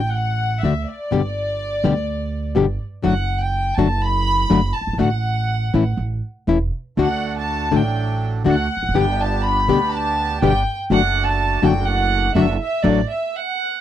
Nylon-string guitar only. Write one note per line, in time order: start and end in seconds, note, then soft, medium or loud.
0.64 0.72 D3 medium
0.64 0.73 A3 medium
0.64 0.73 D4 medium
0.64 0.73 F#4 medium
1.11 1.20 B2 medium
1.11 1.21 D3 medium
1.11 1.21 G3 medium
1.11 1.21 B3 medium
1.11 1.21 G4 medium
1.84 1.93 B2 medium
1.84 1.93 D3 medium
1.84 1.93 G3 medium
1.84 1.93 B3 medium
1.84 1.94 G4 medium
2.55 2.65 B2 medium
2.55 2.65 D3 medium
2.55 2.65 G3 medium
2.55 2.65 B3 medium
2.55 2.65 G4 medium
3.03 3.13 D3 medium
3.03 3.13 F#3 medium
3.03 3.13 A3 medium
3.03 3.14 D4 medium
3.03 3.13 F#4 loud
3.78 3.87 D3 medium
3.78 3.87 F#3 loud
3.78 3.87 A3 medium
3.78 3.87 D4 medium
3.78 3.87 F#4 medium
4.50 4.59 D3 medium
4.50 4.59 F#3 medium
4.50 4.60 A3 medium
4.50 4.60 D4 medium
4.50 4.60 F#4 medium
4.98 5.08 D3 medium
4.98 5.08 A3 medium
4.98 5.08 D4 medium
4.98 5.09 F#4 medium
5.74 5.83 E3 medium
5.74 5.83 A3 medium
5.74 5.83 C#4 medium
5.74 5.83 E4 medium
6.47 6.57 E3 medium
6.47 6.57 A3 medium
6.47 6.57 C#4 medium
6.47 6.58 E4 medium
6.97 7.07 D3 medium
6.97 7.07 A3 medium
6.97 7.08 D4 medium
6.97 7.08 F#4 medium
7.71 7.81 D3 medium
7.71 7.81 A3 medium
7.71 7.81 D4 medium
7.71 7.82 F#4 medium
8.44 8.55 D3 medium
8.44 8.55 A3 medium
8.44 8.55 D4 medium
8.44 8.55 F#4 medium
8.94 9.04 B2 medium
8.94 9.04 D3 medium
8.94 9.04 G3 medium
8.94 9.05 B3 medium
8.94 9.05 G4 loud
9.68 9.78 B2 medium
9.68 9.78 D3 medium
9.68 9.78 G3 medium
9.68 9.78 B3 medium
9.68 9.79 G4 loud
10.42 10.51 B2 medium
10.42 10.52 D3 medium
10.42 10.52 G3 medium
10.42 10.52 B3 loud
10.42 10.52 G4 medium
10.91 11.00 D3 medium
10.91 11.00 F#3 medium
10.91 11.00 A3 medium
10.91 11.01 D4 medium
10.91 11.01 F#4 medium
11.62 11.72 D3 medium
11.62 11.72 F#3 medium
11.62 11.73 A3 medium
11.62 11.72 D4 loud
11.62 11.73 F#4 loud
12.35 12.45 D3 medium
12.35 12.45 F#3 medium
12.35 12.45 A3 medium
12.35 12.46 D4 loud
12.35 12.46 F#4 medium
12.84 13.00 F#3 medium
12.84 13.00 A3 medium
12.84 13.00 D4 medium